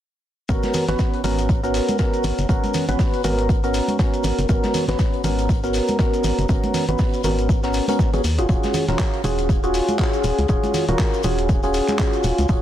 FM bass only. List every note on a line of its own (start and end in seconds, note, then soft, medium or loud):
0.49 0.57 G#1 loud
0.89 0.96 G#1 medium
1.24 1.81 G#1 medium
2.24 2.32 G#1 medium
2.39 2.46 F#1 medium
2.49 2.57 G#1 medium
2.89 2.96 G#1 medium
3.24 3.81 G#1 medium
4.24 4.33 G#1 medium
4.38 4.46 F#1 medium
4.49 4.57 G#1 loud
4.89 4.96 G#1 medium
5.24 5.81 G#1 medium
6.24 6.33 G#1 medium
6.38 6.46 F#1 medium
6.49 6.57 G#1 loud
6.89 6.96 G#1 medium
7.24 7.81 G#1 medium
8.14 8.21 G#1 medium
8.24 8.40 D#2 medium
8.38 8.46 F#1 medium
8.49 8.57 D#1 loud
8.88 8.96 D#1 medium
9.24 9.81 D#1 medium
10.24 10.32 D#1 medium
10.39 10.46 C#2 medium
10.49 10.57 D#1 loud
10.89 10.96 D#1 medium
11.24 11.81 D#1 medium
12.24 12.32 D#1 medium
12.39 12.46 C#2 medium
12.49 12.57 D#1 loud